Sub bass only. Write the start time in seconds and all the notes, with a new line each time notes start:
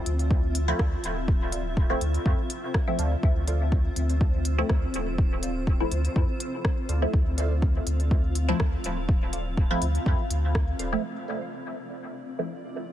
0.06 D2
0.79 D2
1.04 D1
2.01 D2
2.26 F2
2.99 D2
3.23 D2
3.97 D2
4.70 D2
4.94 D1
5.92 D2
6.16 F2
6.89 D2
7.13 D2
7.87 D2
8.60 D2
8.84 D1
9.82 D2
10.06 F2
10.30 D2
10.79 D1